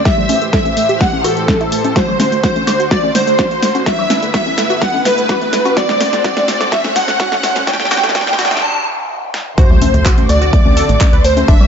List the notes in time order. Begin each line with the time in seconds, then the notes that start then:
Already playing: C5, riser
0.05 A2 E3 G4 E5 E6, kick, snare, closed hi-hat
0.18 A3, low conga
0.29 A3, open hi-hat, high conga
0.42 A3, closed hi-hat
0.53 A4 E5 E6, kick, snare, closed hi-hat
0.65 A3, closed hi-hat, high conga
0.77 A3, open hi-hat
0.89 G4, closed hi-hat
1.01 A3 F#5 F#6, kick, snare, closed hi-hat
1.13 A3, high conga
1.24 F#4 A4 A5, open hi-hat
1.37 A3, closed hi-hat
1.48 A3, kick, snare, closed hi-hat, high conga
1.61 E4, closed hi-hat
1.72 A3, open hi-hat
1.84 A3, closed hi-hat, high conga
1.96 D2 D3 F#4 C5 C6, kick, snare, closed hi-hat, shaker
2.08 A3, low conga, high woodblock
2.20 A3, snare, open hi-hat, high conga, shaker
2.32 A3, closed hi-hat, shaker
2.43 F#4 C5 C6, kick, snare, closed hi-hat, shaker
2.56 A3, closed hi-hat, high conga
2.67 A3, snare, open hi-hat, high woodblock, shaker
2.80 F#4, closed hi-hat, shaker
2.91 F#4 D5 D6, kick, snare, closed hi-hat, shaker
3.03 A3, high conga
3.15 A3 C5 C6, snare, open hi-hat, shaker
3.27 A3, closed hi-hat, shaker
3.39 F#4, kick, snare, closed hi-hat, high conga, high woodblock, shaker
3.51 A3, closed hi-hat
3.63 A3, snare, open hi-hat, shaker
3.75 F#4, closed hi-hat, high conga, shaker
3.86 G2 E4 F#4 B4 E5 E6, kick, snare, closed hi-hat, shaker
3.99 A3, low conga, high woodblock
4.10 A3, snare, open hi-hat, high conga, shaker
4.22 A3, closed hi-hat, shaker
4.34 F#4 E5 E6, kick, snare, closed hi-hat, shaker
4.46 A3, closed hi-hat, high conga
4.58 A3, snare, open hi-hat, shaker
4.70 F#4, closed hi-hat, high woodblock, shaker
4.82 F#4 F#5 F#6, kick, snare, closed hi-hat, shaker
4.94 A3, high conga
5.05 A3 B4 B5, snare, open hi-hat, shaker
5.18 A3, closed hi-hat, shaker
5.29 F#4, kick, snare, closed hi-hat, high conga, high woodblock, shaker
5.42 A3, closed hi-hat
5.53 A3, snare, open hi-hat, shaker
5.65 F#4, closed hi-hat, high conga, shaker
5.77 D2 F#4 C5 D5 D6, kick, snare, closed hi-hat, shaker
5.89 A3, snare, low conga
6.01 A3, snare, open hi-hat, high conga, high woodblock, shaker
6.13 A3, snare, closed hi-hat, shaker
6.24 F#4 D5 D6, kick, snare, closed hi-hat, shaker
6.37 A3, snare, closed hi-hat, high conga
6.48 A3, snare, open hi-hat, shaker
6.61 A3, snare, closed hi-hat, high woodblock, shaker
6.72 F#4 E5 E6, kick, snare, closed hi-hat, shaker
6.84 A3, snare, high conga
6.96 A3 F#5 F#6, snare, open hi-hat, shaker
7.08 A3, snare, closed hi-hat, shaker
7.20 F#4, kick, snare, closed hi-hat, high conga, shaker
7.32 A3, snare, closed hi-hat, high woodblock
7.43 A3, snare, open hi-hat, shaker
7.56 A3, snare, closed hi-hat, high conga, shaker
7.67 A2 E3 F#4 G4 G5 G6, kick, snare, closed hi-hat, noise sweep, shaker
7.73 snare
7.80 A3, snare, low conga
7.85 snare
7.91 F#4, snare, open hi-hat, high conga, high woodblock, shaker
7.97 snare
8.03 A3, snare, closed hi-hat, shaker
8.09 snare
8.15 F#4 G5 G6, kick, snare, closed hi-hat, shaker
8.21 snare
8.27 A3, snare, closed hi-hat, high conga
8.33 snare
8.39 F#4, snare, open hi-hat, shaker
8.45 snare
8.51 A3, snare, closed hi-hat, shaker
8.57 snare
8.63 A5
9.34 snare
9.58 D2 D3 A3 C4 F#4 C5 C6, kick, closed hi-hat, impact, shaker
9.70 A3, low conga, high woodblock
9.82 A3, open hi-hat, high conga, shaker
9.94 D2 A3, closed hi-hat, shaker
10.05 F#4, kick, clap, closed hi-hat
10.18 A3, closed hi-hat, high conga
10.29 D2 A3 D5 D6, open hi-hat, high woodblock, shaker
10.42 F#4, closed hi-hat, shaker
10.53 A3, kick, closed hi-hat, shaker
10.65 D2 A3, high conga
10.77 A4, open hi-hat, shaker
10.89 A1 A3, closed hi-hat, shaker
11.01 A3, kick, clap, closed hi-hat, high conga, high woodblock, shaker
11.13 D2 B4, closed hi-hat
11.24 A3 C5 C6, open hi-hat, shaker
11.37 A3, closed hi-hat, high conga, shaker
11.48 G1 G3 D4 E4 B4 E5 E6, kick, closed hi-hat, shaker
11.61 G3, low conga, high woodblock